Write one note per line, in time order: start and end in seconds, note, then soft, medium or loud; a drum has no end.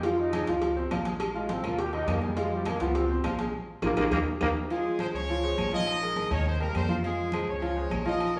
0.00 0.42 F2 medium
0.00 cowbell loud
0.00 low agogo medium
0.04 0.28 F3 medium
0.04 0.21 F4 medium
0.04 0.28 F4 medium
0.04 0.28 F5 medium
0.04 high conga soft
0.19 0.48 D#4 medium
0.19 high conga soft
0.33 0.45 G#3 medium
0.33 0.45 G#4 medium
0.33 0.45 G#5 medium
0.33 cowbell medium
0.33 high conga loud
0.33 low timbale medium
0.33 low agogo loud
0.33 claves medium
0.47 0.88 C#2 medium
0.47 0.72 F3 medium
0.47 0.72 F4 medium
0.47 0.72 F5 medium
0.47 cowbell medium
0.47 high conga soft
0.62 cowbell loud
0.62 high conga soft
0.62 low agogo medium
0.76 0.88 C4 medium
0.76 0.89 C5 medium
0.76 0.89 C6 medium
0.76 high conga soft
0.91 1.58 A#1 medium
0.91 1.03 F4 medium
0.91 1.04 F5 medium
0.91 1.03 F6 medium
0.91 cowbell medium
0.91 high conga medium
0.91 low timbale medium
0.91 low agogo loud
0.91 claves medium
1.05 1.30 G#3 medium
1.05 1.30 G#4 medium
1.05 1.30 G#5 medium
1.05 cowbell medium
1.05 high conga medium
1.05 low agogo medium
1.20 cowbell loud
1.20 high conga soft
1.20 low agogo loud
1.20 claves medium
1.35 1.54 G#3 medium
1.35 1.59 F4 medium
1.35 1.59 F5 medium
1.35 1.59 F6 medium
1.35 high conga soft
1.49 1.68 C4 medium
1.49 cowbell medium
1.49 high conga loud
1.49 low timbale medium
1.49 low agogo medium
1.63 2.04 D#2 loud
1.63 1.88 A#3 medium
1.63 1.81 F4 loud
1.63 1.88 A#4 medium
1.63 1.88 A#5 medium
1.63 high conga soft
1.63 low conga medium
1.63 low agogo loud
1.63 claves medium
1.78 1.95 G4 loud
1.78 cowbell loud
1.78 high conga soft
1.93 2.17 D#3 loud
1.93 2.17 D#4 medium
1.93 2.11 D#4 loud
1.93 2.17 D#5 medium
1.93 high conga soft
1.93 low agogo medium
2.07 2.75 F2 medium
2.07 2.22 A#3 medium
2.07 cowbell medium
2.07 high conga medium
2.07 low timbale medium
2.07 low agogo loud
2.07 claves medium
2.22 2.39 G3 medium
2.22 2.34 G#3 medium
2.22 2.35 G#4 medium
2.22 2.35 G#5 medium
2.22 high conga medium
2.37 2.61 F3 medium
2.37 2.55 G#3 loud
2.37 2.61 F4 medium
2.37 2.61 F5 medium
2.37 cowbell loud
2.37 high conga soft
2.37 low agogo medium
2.51 2.69 G3 medium
2.51 high conga soft
2.65 2.78 G#3 medium
2.65 2.81 A#3 medium
2.65 2.78 G#4 medium
2.65 2.78 G#5 medium
2.65 cowbell medium
2.65 high conga loud
2.65 low timbale medium
2.65 low agogo loud
2.65 claves medium
2.80 3.21 C#2 loud
2.80 3.05 F3 medium
2.80 2.97 B3 medium
2.80 3.05 F4 medium
2.80 3.05 F5 medium
2.80 cowbell medium
2.80 high conga soft
2.95 3.24 C4 medium
2.95 cowbell loud
2.95 high conga soft
2.95 low agogo medium
3.09 3.22 C4 medium
3.09 3.22 C5 medium
3.09 3.22 C6 medium
3.09 high conga soft
3.24 3.51 A#1 loud
3.24 3.36 F4 medium
3.24 3.37 F5 medium
3.24 3.37 F6 medium
3.24 cowbell medium
3.24 high conga medium
3.24 low timbale medium
3.24 low agogo loud
3.24 claves medium
3.38 3.51 G#3 medium
3.38 3.51 G#4 medium
3.38 3.51 G#5 medium
3.38 cowbell medium
3.38 high conga medium
3.38 low agogo medium
3.82 3.93 A#1 medium
3.82 3.90 A#3 loud
3.82 3.92 F4 loud
3.82 3.92 G#4 loud
3.82 3.92 A#4 loud
3.82 cowbell loud
3.82 high conga loud
3.82 high timbale loud
3.82 claves loud
3.96 4.08 A#1 loud
3.96 4.05 A#3 loud
3.96 4.07 F4 medium
3.96 4.07 G#4 medium
3.96 4.07 A#4 loud
3.96 cowbell loud
3.96 high conga loud
3.96 high timbale loud
3.96 claves loud
4.11 4.22 D#2 medium
4.11 4.19 A#3 medium
4.11 4.21 D#4 loud
4.11 4.21 G4 medium
4.11 4.21 A#4 medium
4.11 cowbell loud
4.11 high conga loud
4.11 high timbale medium
4.11 claves loud
4.41 4.52 D#2 medium
4.41 4.49 A#3 loud
4.41 4.50 D#4 medium
4.41 4.50 G4 medium
4.41 4.50 A#4 medium
4.41 cowbell loud
4.41 high conga medium
4.41 high timbale loud
4.41 claves loud
4.70 4.94 F3 medium
4.70 4.99 G#3 medium
4.70 4.95 F4 medium
4.70 4.98 G#4 medium
4.70 4.94 F5 medium
4.70 high conga soft
4.70 low agogo medium
4.85 high conga soft
4.99 5.24 G#3 medium
4.99 5.08 C4 medium
4.99 5.24 G#4 medium
4.99 5.24 C5 medium
4.99 5.07 C5 loud
4.99 high conga loud
4.99 low timbale medium
4.99 low agogo loud
4.99 claves medium
5.13 5.54 C#2 medium
5.13 5.69 C#4 medium
5.13 5.69 C#5 loud
5.13 high conga soft
5.28 5.41 F3 medium
5.28 5.41 F4 medium
5.28 5.42 F5 medium
5.28 high conga soft
5.28 low agogo medium
5.43 5.67 G#3 medium
5.43 5.67 G#4 medium
5.43 5.67 C5 medium
5.43 high conga soft
5.58 6.25 A#1 loud
5.58 high conga medium
5.58 low timbale medium
5.58 low agogo loud
5.58 claves medium
5.72 5.97 F3 medium
5.72 6.27 D#4 medium
5.72 5.97 F4 medium
5.72 6.27 D#5 loud
5.72 5.97 F5 loud
5.72 high conga medium
5.72 low agogo medium
5.87 low agogo loud
5.87 claves medium
6.02 6.14 G#3 medium
6.02 6.14 G#4 medium
6.02 6.14 A#4 medium
6.02 high conga soft
6.16 6.28 G#3 medium
6.16 6.28 G#4 medium
6.16 6.28 A#4 medium
6.16 high conga medium
6.16 low timbale medium
6.16 low agogo medium
6.30 6.71 D#2 medium
6.30 6.55 D#3 medium
6.30 6.46 C#4 medium
6.30 6.55 D#4 medium
6.30 6.46 C#5 loud
6.30 6.55 D#5 medium
6.30 high conga soft
6.30 low conga medium
6.30 low agogo loud
6.30 claves medium
6.46 6.60 C4 medium
6.46 6.60 C5 loud
6.46 high conga soft
6.46 low conga medium
6.60 6.84 G3 medium
6.60 6.75 A#3 medium
6.60 6.84 G4 medium
6.60 6.84 A#4 medium
6.60 6.74 A#4 loud
6.60 high conga soft
6.60 low agogo medium
6.74 7.42 F2 loud
6.74 6.96 C4 medium
6.74 6.96 C5 loud
6.74 high conga medium
6.74 low timbale medium
6.74 low agogo loud
6.74 claves medium
6.89 7.01 F3 medium
6.89 7.01 F4 medium
6.89 7.01 F5 medium
6.89 high conga medium
7.03 7.27 F3 medium
7.03 7.45 G#3 medium
7.03 7.27 F4 medium
7.03 7.45 G#4 loud
7.03 7.27 F5 medium
7.03 high conga soft
7.03 low agogo medium
7.17 high conga soft
7.32 7.57 G#3 medium
7.32 7.57 G#4 medium
7.32 7.57 C5 medium
7.32 high conga medium
7.32 low timbale medium
7.32 low agogo loud
7.32 claves medium
7.47 7.88 C#2 loud
7.47 8.07 C#4 medium
7.47 8.07 C#5 loud
7.47 high conga soft
7.61 7.74 F3 medium
7.61 7.74 F4 medium
7.61 7.74 F5 medium
7.61 high conga soft
7.61 low agogo medium
7.76 8.00 G#3 medium
7.76 8.00 G#4 medium
7.76 8.01 C5 medium
7.76 high conga soft
7.90 8.40 A#1 medium
7.90 high conga medium
7.90 low timbale medium
7.90 low agogo loud
7.90 claves medium
8.05 8.29 F3 medium
8.05 8.34 D#4 medium
8.05 8.30 F4 medium
8.05 8.33 D#5 loud
8.05 8.30 F5 medium
8.05 high conga medium
8.05 low agogo medium
8.20 high conga soft
8.20 low agogo loud
8.20 claves medium
8.35 8.40 G#3 medium
8.35 8.40 C#4 medium
8.35 8.40 G#4 medium
8.35 8.40 A#4 medium
8.35 high conga soft